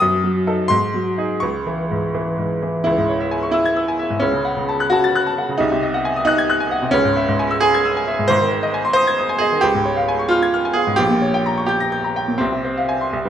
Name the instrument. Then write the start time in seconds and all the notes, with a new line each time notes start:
grand piano
0.00 F#2 D#6
0.24 F#3
0.47 D#4 A4
0.68 G#2 C6
0.94 F#3
1.18 D#4 G#4
1.40 C#2 C#6
1.67 E3
1.91 G#2
2.15 E3
2.38 G#2
2.63 E3
2.84 C#2 E4
2.98 G#2
3.09 C#5
3.20 E5
3.31 G#5
3.43 C#6
3.51 E4 E6
3.65 G#6
3.77 E6
3.88 G#5
3.99 E5
4.10 G#2
4.20 C#2 C#4
4.33 C#3
4.45 F#5
4.57 C#3
4.69 A5
4.80 F#6
4.90 F#4 A5
5.04 A6
5.16 F#6
5.26 A5
5.38 F#5
5.49 C#3
5.58 C2 D#4
5.72 C3
5.83 D#5
5.94 F#5
6.05 G#5
6.16 D#6
6.25 D#4 F#6
6.38 G#6
6.50 F#6
6.60 G#5
6.71 F#5
6.82 C3
6.91 C#2 C#4
7.05 G#2
7.17 E5
7.28 G#2
7.39 G#5
7.51 E6
7.60 G#4 G#5
7.74 G#6
7.85 E6
7.97 G#5
8.08 E5
8.19 G#2
8.28 G#1 G#2 C5
8.41 D#3
8.52 C5
8.63 D#5
8.74 G#5
8.85 C6
8.93 C5 D#6
9.07 G#6
9.18 D#6
9.29 G#5
9.38 G#4 D#5
9.52 D#3
9.61 C#2 G4
9.74 G#2
9.85 C#5
9.97 F5
10.08 G#5
10.19 C#6
10.29 F4 F6
10.42 G#6
10.54 F6
10.65 G#5
10.73 G#4 F5
10.87 G#2
10.96 A#1 G4
11.10 A#2
11.22 C#5
11.34 G5
11.46 A#5
11.57 C#6
11.66 G4 G6
11.80 A#6
11.92 G6
12.04 A#5
12.16 G5
12.28 A#2
12.38 C2 C4
12.52 C3
12.65 C5
12.77 F5
12.89 G#5
13.01 C6
13.13 C2
13.25 G2